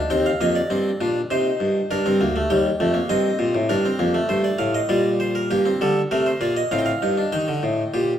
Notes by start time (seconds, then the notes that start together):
Already playing: D4
0.10 D#2 C4 G5
0.26 F5
0.41 F2 A#3 D#5
0.56 D5
0.70 G2 C4
1.01 A#2 D4
1.30 C3 D#4 C5
1.60 G2
1.91 G2 D4 A#4
2.06 G2 C4
2.21 D2 A#3
2.36 A3
2.50 D#2 G3 G5
2.80 F2 A3
2.94 A#3
3.09 G2 C4 D#5
3.39 A#2
3.55 A2
3.69 G2 D4 A#4
3.85 C4
3.99 F2 A#3
4.14 A3
4.29 G2 C5
4.44 D5
4.58 A2 F5
4.74 D#5
4.89 A#2 G3 D5
5.20 C5
5.35 A#4
5.51 G2 A#3 G4
5.66 C4
5.81 D3 G3 A4
6.11 C3 A3 A#4
6.26 C5
6.41 A#2 A#3 D5
6.57 D#5
6.71 A2 C4 F5
6.79 G5
6.86 F5
7.02 G2 D#4
7.18 D4
7.32 D#3 D#4 G5
7.48 D3
7.63 A2
7.94 A#2 G4